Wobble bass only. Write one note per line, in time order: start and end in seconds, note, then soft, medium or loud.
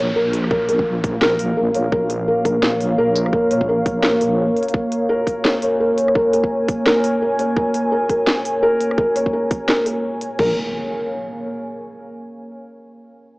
0.00 0.15 A#1 loud
0.16 0.68 A#1 medium
0.69 1.74 A#1 medium
1.75 1.91 A#1 loud
1.92 2.44 A#1 medium
2.45 2.97 A#1 loud
2.98 3.50 A#1 loud
3.51 4.20 A#1 medium
4.22 4.56 A#1 loud
10.39 10.55 A#1 medium